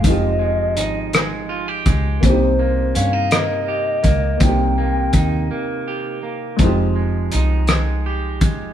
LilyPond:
<<
  \new Staff \with { instrumentName = "Soft synth lead" } { \time 6/8 \key f \minor \tempo 4. = 55 ees''2 r4 | c''4 f''8 ees''4. | g''2 r4 | r2. | }
  \new Staff \with { instrumentName = "Grand piano" } { \time 6/8 \key f \minor <aes c' ees' g'>2. | <bes c' des' ees' g'>2. | <bes c' ees' g'>2. | <aes c' ees' g'>2. | }
  \new Staff \with { instrumentName = "Clean electric guitar" } { \time 6/8 \key f \minor <f aes ees' g'>8 aes8 ees'8 aes8 f'16 g'16 aes8 | c8 bes8 des'16 ees'16 bes8 g'8 bes8 | c8 bes8 ees'8 bes8 g'8 bes8 | f8 aes8 ees'8 aes8 g'8 aes8 | }
  \new Staff \with { instrumentName = "Fingered electric bass" } { \clef bass \time 6/8 \key f \minor f,,4 aes,,4. des,8 | c,4 g,4. des,8 | c,4 ees,8 r4. | f,,4 c,4. ges,,8 | }
  \new DrumStaff \with { instrumentName = "Drums" } \drummode { \time 6/8 <hh bd>4 hh8 <hh ss>4 <hh bd>8 | <hh bd>4 hh8 <hh ss>4 <hh bd>8 | <hh bd>4 <hh bd>8 r4. | <hh bd>4 hh8 <hh ss>4 <hh bd>8 | }
>>